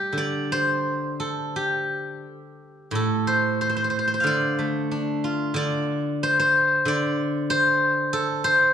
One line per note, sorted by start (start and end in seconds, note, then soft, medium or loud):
0.00 0.83 G3 medium
0.00 1.56 G4 medium
0.13 2.23 D3 medium
0.18 2.02 D5 medium
0.52 2.50 C5 medium
1.20 2.95 A4 medium
1.56 3.91 G4 medium
2.91 4.25 A2 medium
2.95 5.15 A4 medium
3.27 3.61 C5 medium
3.61 3.69 C5 medium
3.69 3.76 C5 medium
3.76 3.84 C5 medium
3.84 3.90 C5 medium
3.90 3.98 C5 medium
3.99 4.07 C5 medium
4.08 4.13 C5 medium
4.14 6.12 C5 medium
4.20 5.53 D3 medium
4.20 5.87 F5 medium
4.27 5.56 D5 medium
4.59 5.89 A3 soft
4.91 6.23 D4 soft
5.24 6.56 F4 soft
5.54 6.84 D3 medium
5.54 6.88 D5 medium
6.23 6.39 C5 medium
6.40 7.50 C5 medium
6.85 8.73 D3 medium
6.85 8.72 D5 loud
7.50 8.44 C5 loud
8.13 8.73 A4 medium
8.44 8.73 C5 loud